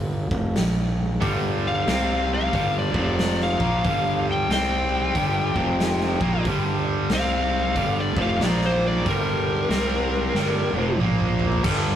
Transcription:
Already playing: fingered electric bass G1
0.31 fingered electric bass F1, kick
0.56 fingered electric bass A#1, snare, open hi-hat
1.21 fingered electric bass G1, overdriven electric guitar G2 D3 G3, kick, open hi-hat
1.68 lead electric guitar F5
1.87 fingered electric bass C2, overdriven electric guitar C3 G3 C4, snare, open hi-hat
2.34 lead electric guitar F5
2.53 fingered electric bass G1, overdriven electric guitar G2 D3 G3, kick, open hi-hat
2.79 lead electric guitar D5
2.93 fingered electric bass F1, overdriven electric guitar F2 C3 F3, kick
3.19 snare, open hi-hat
3.41 lead electric guitar F5, snare
3.60 fingered electric bass A#1, overdriven electric guitar A#2 F3 A#3, kick
3.83 fingered electric bass G1, overdriven electric guitar G2 D3 G3, kick, open hi-hat
4.31 lead electric guitar G5
4.49 fingered electric bass C2, overdriven electric guitar C3 G3 C4, lead electric guitar G5, snare, open hi-hat
5.15 fingered electric bass G1, overdriven electric guitar G2 D3 G3, kick, open hi-hat
5.55 fingered electric bass F1, overdriven electric guitar F2 C3 F3, kick
5.80 snare, open hi-hat
6.01 snare
6.20 fingered electric bass A#1, overdriven electric guitar A#2 F3 A#3, kick
6.45 fingered electric bass G1, overdriven electric guitar G2 D3 G3, kick, open hi-hat
7.10 fingered electric bass C2, overdriven electric guitar C3 G3 C4, lead electric guitar F5, snare, open hi-hat
7.75 fingered electric bass G1, overdriven electric guitar G2 D3 G3, kick, open hi-hat
8.00 lead electric guitar D5
8.16 fingered electric bass F1, overdriven electric guitar F2 C3 F3, kick
8.22 lead electric guitar F5
8.40 fingered electric bass A#1, overdriven electric guitar A#2 F3 A#3, snare, open hi-hat
8.44 lead electric guitar D5
8.62 snare
8.66 lead electric guitar C5
8.87 lead electric guitar D5
9.06 fingered electric bass G1, overdriven electric guitar G2 D3 G3, lead electric guitar A#4, kick, open hi-hat
9.69 fingered electric bass C2, overdriven electric guitar C3 G3 C4, snare, open hi-hat
10.34 fingered electric bass G1, overdriven electric guitar G2 D3 G3, snare
10.74 fingered electric bass F1, overdriven electric guitar F2 C3 F3, high tom
10.98 fingered electric bass A#1, overdriven electric guitar A#2 F3 A#3, mid tom
11.20 mid tom
11.40 floor tom
11.52 floor tom
11.63 fingered electric bass G1, overdriven electric guitar G2 D3 G3, kick, crash

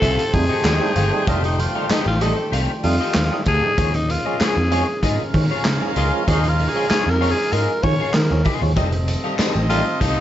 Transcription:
Already playing: tonewheel organ D#3 F3 A3 C4, alto saxophone A4
0.01 picked electric bass C2, horn section A3 G4 C5 G5, clean electric guitar G4 A4 F5, kick, closed hi-hat
0.19 closed hi-hat
0.33 picked electric bass F2, tonewheel organ G3 A3 D#4, alto saxophone G#4, muted clean electric guitar stroke, kick, open hi-hat
0.49 clean electric guitar G4 A4 D#5
0.65 picked electric bass D#2, clean electric guitar G4 A4 D#5, snare, clap, closed hi-hat
0.80 tonewheel organ G3 A3 D#4, muted clean electric guitar stroke
0.96 picked electric bass G1, tonewheel organ F3, clean electric guitar G4 A4 F5, closed hi-hat
1.13 tonewheel organ G3 A3 D#4, muted clean electric guitar stroke
1.27 picked electric bass F1, tonewheel organ G3 A3 D4 D#4, alto saxophone F4, clean electric guitar G4 A4 D#5, kick, closed hi-hat
1.44 alto saxophone D#4, muted clean electric guitar stroke, closed hi-hat
1.59 tonewheel organ F3, alto saxophone F4, muted clean electric guitar stroke, closed hi-hat
1.75 tonewheel organ G3 A3 D#4, clean electric guitar G4 A4 F5
1.89 alto saxophone D#4, clean electric guitar G4 A4 D#5, muted picked electric bass stroke, snare, clap, closed hi-hat
2.06 picked electric bass A1, alto saxophone F4, muted clean electric guitar stroke
2.21 tonewheel organ G3 A3 D#4, clean electric guitar G4 A4 D#5, alto saxophone A4, closed hi-hat
2.37 muted clean electric guitar stroke
2.52 picked electric bass C2, clean electric guitar G4 A4 F5, closed hi-hat
2.83 picked electric bass F2, tonewheel organ G3 A3 D#4, alto saxophone F4, muted clean electric guitar stroke, open hi-hat
3.00 clean electric guitar G4 A4 D#5
3.14 picked electric bass D#2, muted clean electric guitar stroke, snare, clap, closed hi-hat
3.32 tonewheel organ G3 A3 D#4, muted clean electric guitar stroke
3.46 picked electric bass D2, tonewheel organ F3, clean electric guitar G4 A4 F5, alto saxophone G#4, kick, closed hi-hat
3.63 tonewheel organ G3 A3 D#4, muted clean electric guitar stroke
3.77 picked electric bass D#2, tonewheel organ F3 G#3 A#3 C#4, clean electric guitar F4 G#4 C#5, kick, closed hi-hat
3.94 alto saxophone D#4, muted clean electric guitar stroke, closed hi-hat
4.09 tonewheel organ D#3, alto saxophone F4, muted clean electric guitar stroke, closed hi-hat
4.25 tonewheel organ F3 G#3 C#4, clean electric guitar F4 G#4 D#5
4.40 clean electric guitar F4 G#4 C#5, alto saxophone G#4, muted picked electric bass stroke, snare, clap, closed hi-hat
4.56 picked electric bass F2, muted clean electric guitar stroke
4.71 tonewheel organ F3 G#3 C#4, clean electric guitar F4 G#4 C#5, closed hi-hat
4.88 muted clean electric guitar stroke
5.02 picked electric bass G#2, horn section C#4 F4 A#4 F5, clean electric guitar F4 G#4 D#5, kick, closed hi-hat
5.34 picked electric bass D#3, tonewheel organ F3 G#3 C#4, muted clean electric guitar stroke, kick, open hi-hat
5.51 clean electric guitar F4 G#4 C#5
5.65 picked electric bass C#3, muted clean electric guitar stroke, snare, clap, closed hi-hat
5.81 tonewheel organ F3 G#3 C#4, muted clean electric guitar stroke
5.96 picked electric bass C#2, tonewheel organ D#3, clean electric guitar F4 G#4 D#5, alto saxophone F4, closed hi-hat
6.13 tonewheel organ F3 G#3 C#4, muted clean electric guitar stroke
6.27 picked electric bass D#2, tonewheel organ F3 G#3 C#4 D#4, alto saxophone D#4, clean electric guitar F4 G#4 C#5, kick, closed hi-hat
6.44 muted clean electric guitar stroke, closed hi-hat
6.49 alto saxophone F4
6.59 tonewheel organ D#3, muted clean electric guitar stroke, open hi-hat
6.69 alto saxophone G#4
6.75 tonewheel organ F3 G#3 C#4, clean electric guitar F4 G#4 D#5
6.90 clean electric guitar F4 G#4 C#5, alto saxophone G#4, muted picked electric bass stroke, snare, clap, closed hi-hat
7.06 picked electric bass F2, alto saxophone A#4, muted clean electric guitar stroke
7.21 tonewheel organ F3 G#3 C#4, clean electric guitar F4 G#4 C#5, open hi-hat
7.32 alto saxophone G#4
7.38 muted clean electric guitar stroke
7.52 picked electric bass G#2, clean electric guitar F4 G#4 D#5, alto saxophone A#4, closed hi-hat
7.83 picked electric bass D#3, tonewheel organ F3 G#3 C#4, alto saxophone C#5, muted clean electric guitar stroke, kick, open hi-hat
8.00 clean electric guitar F4 G#4 C#5
8.14 picked electric bass D#3, alto saxophone A#4, muted clean electric guitar stroke, snare, clap, closed hi-hat
8.31 picked electric bass D#2, tonewheel organ F3 G#3 C#4, muted clean electric guitar stroke
8.45 tonewheel organ D#3, clean electric guitar F4 G#4 D#5, kick, open hi-hat
8.61 picked electric bass D#2, tonewheel organ F3 G#3 C#4, muted clean electric guitar stroke
8.76 picked electric bass F1, tonewheel organ D#3 G3 A3 C4 D#4, horn section C4 D#4 A4 D#5, clean electric guitar G4 A4 D#5, kick, closed hi-hat, tambourine
8.92 muted clean electric guitar stroke, closed hi-hat
9.07 tonewheel organ F3, muted clean electric guitar stroke, closed hi-hat, tambourine
9.24 tonewheel organ G3 A3 D#4, clean electric guitar G4 A4 F5, tambourine
9.39 clean electric guitar G4 A4 D#5, muted picked electric bass stroke, snare, clap, closed hi-hat, tambourine
9.55 picked electric bass A1, muted clean electric guitar stroke, tambourine
9.69 tonewheel organ G3 A3 D#4, alto saxophone F4, clean electric guitar G4 A4 D#5, closed hi-hat, tambourine
9.86 muted clean electric guitar stroke
10.00 picked electric bass C2, alto saxophone D#4, clean electric guitar G4 A4 F5, kick, closed hi-hat, tambourine

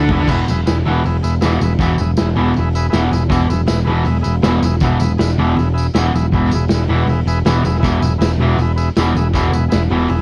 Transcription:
0.09 picked electric bass E1, distorted electric guitar E2 E3, transistor combo organ G#4 B4 E5, kick, open hi-hat
0.19 picked electric bass D2, distorted electric guitar D3 D4
0.28 picked electric bass E1, distorted electric guitar E2 B2 E3, transistor combo organ G#4 B4 E5, kick, crash, tambourine
0.46 picked electric bass E1, transistor combo organ E5, open hi-hat, tambourine
0.50 transistor combo organ G#4 B4
0.66 picked electric bass E1, transistor combo organ G#4 B4 E5, snare, open hi-hat, tambourine
0.85 picked electric bass E1, distorted electric guitar E2 B2 E3, transistor combo organ G#4 B4 E5, open hi-hat
1.04 picked electric bass E1, transistor combo organ G#4 B4 E5, open hi-hat, tambourine
1.22 picked electric bass E1, transistor combo organ G#4 B4 E5, open hi-hat, tambourine
1.41 picked electric bass E1, distorted electric guitar E2 B2 E3, transistor combo organ G#4 B4 E5, snare, open hi-hat, tambourine
1.60 picked electric bass E1, transistor combo organ G#4 B4 E5, open hi-hat, tambourine
1.79 picked electric bass E1, distorted electric guitar E2 B2 E3, transistor combo organ G#4 B4, kick, open hi-hat, tambourine
1.83 transistor combo organ E5
1.98 picked electric bass E1, transistor combo organ G#4 B4 E5, open hi-hat, tambourine
2.17 picked electric bass E1, transistor combo organ G#4 B4 E5, snare, open hi-hat, tambourine
2.36 picked electric bass E1, distorted electric guitar E2 B2 E3, transistor combo organ G#4 B4 E5, open hi-hat
2.54 picked electric bass E1, open hi-hat, tambourine
2.58 transistor combo organ G#4 B4 E5
2.73 transistor combo organ G#4 B4 E5, open hi-hat, tambourine
2.90 picked electric bass E1, distorted electric guitar E2, transistor combo organ G#4 B4 E5, snare, open hi-hat, tambourine
2.94 distorted electric guitar B2 E3
3.11 picked electric bass E1, transistor combo organ G#4 B4 E5, open hi-hat, tambourine
3.29 picked electric bass E1, distorted electric guitar E2 B2 E3, transistor combo organ G#4 B4 E5, kick, open hi-hat, tambourine
3.48 picked electric bass E1, transistor combo organ G#4 B4 E5, open hi-hat, tambourine
3.67 picked electric bass E1, transistor combo organ G#4 B4 E5, snare, open hi-hat, tambourine
3.85 picked electric bass E1, distorted electric guitar E2 B2 E3, transistor combo organ G#4 B4 E5, open hi-hat
4.04 picked electric bass E1, transistor combo organ G#4 B4 E5, open hi-hat, tambourine
4.21 transistor combo organ G#4 B4 E5, open hi-hat, tambourine
4.26 picked electric bass E1
4.42 picked electric bass E1, distorted electric guitar E2 B2 E3, transistor combo organ G#4 B4 E5, snare, open hi-hat, tambourine
4.62 picked electric bass E1, transistor combo organ G#4 B4 E5, open hi-hat, tambourine
4.80 picked electric bass E1, distorted electric guitar E2 B2 E3, transistor combo organ B4 E5, kick, open hi-hat, tambourine
4.85 transistor combo organ G#4
5.00 picked electric bass E1, transistor combo organ G#4 B4 E5, open hi-hat, tambourine
5.17 picked electric bass E1, transistor combo organ G#4 B4 E5, snare, open hi-hat, tambourine
5.38 picked electric bass E1, distorted electric guitar E2 B2 E3, transistor combo organ G#4 B4 E5, open hi-hat
5.56 picked electric bass E1, transistor combo organ G#4 B4 E5, open hi-hat, tambourine
5.74 transistor combo organ G#4 B4 E5, open hi-hat
5.78 tambourine
5.94 picked electric bass E1, distorted electric guitar E2 B2 E3, transistor combo organ G#4 B4 E5, snare, open hi-hat, tambourine
6.13 picked electric bass E1, transistor combo organ G#4 B4 E5, open hi-hat, tambourine
6.31 picked electric bass E1, distorted electric guitar E2 B2 E3, transistor combo organ G#4 B4 E5, kick, open hi-hat, tambourine
6.50 picked electric bass E1, open hi-hat, tambourine
6.54 transistor combo organ G#4 B4 E5
6.68 picked electric bass E1, snare, open hi-hat, tambourine
6.74 transistor combo organ G#4 B4 E5
6.88 picked electric bass E1, distorted electric guitar E2 B2 E3, transistor combo organ G#4 B4 E5, open hi-hat
7.06 picked electric bass E1, transistor combo organ G#4 B4 E5, open hi-hat, tambourine
7.26 picked electric bass E1, transistor combo organ G#4 B4 E5, open hi-hat, tambourine
7.45 picked electric bass E1, distorted electric guitar E2 B2 E3, transistor combo organ G#4 B4 E5, snare, open hi-hat, tambourine
7.64 picked electric bass E1, transistor combo organ G#4 B4 E5, open hi-hat, tambourine
7.75 snare
7.79 picked electric bass E1, distorted electric guitar E2, transistor combo organ G#4 B4 E5, kick, open hi-hat
7.84 distorted electric guitar B2 E3, tambourine
8.00 picked electric bass E1, transistor combo organ G#4 B4 E5, open hi-hat, tambourine
8.18 picked electric bass E1, transistor combo organ G#4 B4 E5, snare, open hi-hat, tambourine
8.38 picked electric bass E1, distorted electric guitar E2 B2 E3, transistor combo organ G#4 B4 E5, open hi-hat
8.57 picked electric bass E1, transistor combo organ G#4, open hi-hat, tambourine
8.61 transistor combo organ B4 E5
8.76 transistor combo organ G#4 B4 E5, open hi-hat, tambourine
8.96 picked electric bass E1, distorted electric guitar E2 B2 E3, transistor combo organ G#4 B4 E5, snare, open hi-hat, tambourine
9.15 picked electric bass E1, transistor combo organ G#4 B4 E5, open hi-hat, tambourine
9.33 picked electric bass E1, distorted electric guitar E2 B2 E3, transistor combo organ G#4 B4 E5, kick, open hi-hat, tambourine
9.51 picked electric bass E1, transistor combo organ G#4 B4 E5, open hi-hat, tambourine
9.68 transistor combo organ G#4 B4 E5, snare, open hi-hat, tambourine
9.73 picked electric bass E1
9.90 picked electric bass E1, distorted electric guitar E2 B2 E3, transistor combo organ G#4 B4 E5, open hi-hat
10.08 picked electric bass E1, transistor combo organ G#4 B4 E5, open hi-hat, tambourine

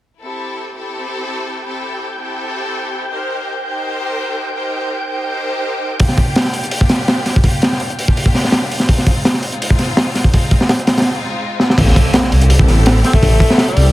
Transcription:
0.21 string section C4 E4 G4 A4, synth texture G5 G6
0.76 string section C4 E4 G4 A4
1.66 string section C4 E4 G4 A4
2.20 string section C4 E4 G4 A4
3.11 string section D#4 G4 A#4 C5
3.65 string section D#4 G4 A#4 C5
4.55 string section D#4 G4 A#4 C5
5.09 string section D#4 G4 A#4 C5
6.00 string section A#3 D4 F4 G4, kick, open hi-hat
6.09 snare
6.17 kick, open hi-hat
6.36 snare, open hi-hat
6.45 snare
6.54 string section A#3 D4 F4 G4, open hi-hat
6.64 closed hi-hat
6.71 open hi-hat
6.81 kick
6.89 snare, open hi-hat
7.08 snare, open hi-hat
7.26 snare, open hi-hat
7.36 kick
7.44 string section A#3 D4 F4 G4, kick, open hi-hat
7.62 snare, open hi-hat
7.72 snare
7.80 open hi-hat
7.90 closed hi-hat
7.98 string section A#3 D4 F4 G4, open hi-hat
8.08 kick
8.17 open hi-hat
8.26 kick
8.35 snare, open hi-hat
8.45 snare
8.52 snare, open hi-hat
8.72 open hi-hat
8.80 snare
8.88 string section G#3 C4 D#4 F4, kick, open hi-hat
8.98 snare
9.06 kick, open hi-hat
9.25 snare, open hi-hat
9.34 snare
9.42 string section G#3 C4 D#4 F4, open hi-hat
9.52 closed hi-hat
9.62 open hi-hat
9.70 kick
9.79 snare, open hi-hat
9.97 snare, open hi-hat
10.15 snare, open hi-hat
10.24 kick
10.33 string section G#3 C4 D#4 F4, kick, open hi-hat
10.51 kick, open hi-hat
10.61 snare
10.69 snare, open hi-hat
10.79 closed hi-hat
10.87 string section G#3 C4 D#4 F4, snare, open hi-hat
10.98 snare, open hi-hat
11.01 snare, open hi-hat
11.60 snare
11.70 snare
11.78 detuned saw bass A1, string section C4 E4 G4 A4, kick, open hi-hat, crash, impact
11.87 snare
11.96 kick, open hi-hat
12.14 snare, open hi-hat
12.24 snare
12.32 detuned saw bass C2, string section C4 E4 G4 A4, open hi-hat
12.41 closed hi-hat
12.50 open hi-hat
12.59 kick
12.68 detuned saw bass A1, snare, open hi-hat
12.86 snare, open hi-hat
13.04 tenor saxophone C4, snare, open hi-hat
13.13 tenor saxophone A3, kick
13.23 detuned saw bass A1, string section C4 E4 G4 A4, kick, open hi-hat
13.40 kick, open hi-hat
13.50 snare
13.58 snare, open hi-hat
13.68 tenor saxophone G3, closed hi-hat
13.77 detuned saw bass C2, string section C4 E4 G4 A4, open hi-hat

